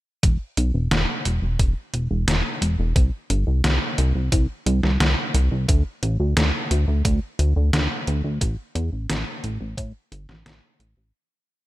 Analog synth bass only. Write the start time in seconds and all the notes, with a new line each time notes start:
0.23 E1
0.57 B1
0.74 E1
0.91 E1
1.25 E1
1.42 E1
1.59 E1
1.94 E1
2.11 E1
2.28 E1
2.62 E1
2.79 E1
2.96 C2
3.30 G1
3.47 C2
3.64 C2
3.98 C2
4.15 C2
4.32 C2
4.66 C2
4.83 C2
5.00 C2
5.34 C2
5.51 C2
5.69 D2
6.03 A1
6.20 D2
6.37 D2
6.71 D2
6.88 D2
7.05 D2
7.39 D2
7.56 D2
7.73 D2
8.07 D2
8.24 D2
8.41 A1
8.75 E2
8.92 A1
9.10 A1
9.44 A1
9.61 A1
9.78 A2
10.12 G1
10.29 A1
10.46 A1
10.80 A1
10.97 A1